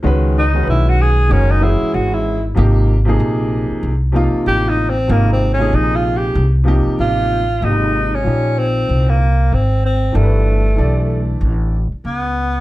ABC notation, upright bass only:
X:1
M:4/4
L:1/16
Q:"Swing 16ths" 1/4=95
K:Ab
V:1 name="Upright bass" clef=bass
D,,4 _C,,4 _G,,,3 z A,,,4 | A,,,4 B,,,3 z C,,3 z =A,,,4 | A,,,4 B,,,4 C,,3 z =A,,,4 | A,,,4 B,,,4 C,,4 A,,,4 |
G,,,4 =B,,,4 =A,,,3 z D,,4 |]